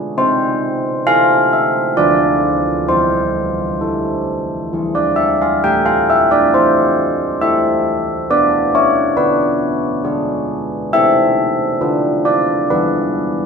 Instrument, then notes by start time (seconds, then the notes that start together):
church bells
Already playing: B3 D4 G#4
0.18 C4 C5
1.07 E4 A4 F5
1.53 E5
1.97 D3 F4 B4 D5
2.89 E3 C5
3.81 E4 A4
4.73 E3 E4 G#4
4.95 D5
5.16 E5
5.42 F5
5.64 A3 G5
5.86 F5
6.10 E5
6.31 D5
6.54 E4 C5
7.41 E4 A4 E5
8.30 B3 D5
8.75 C#5
9.17 D4 B4
10.04 D4 G#4
10.93 C4 E4 A4 E5
11.81 D4 F4 B4
12.25 D5
12.70 E3 D4 G#4 B4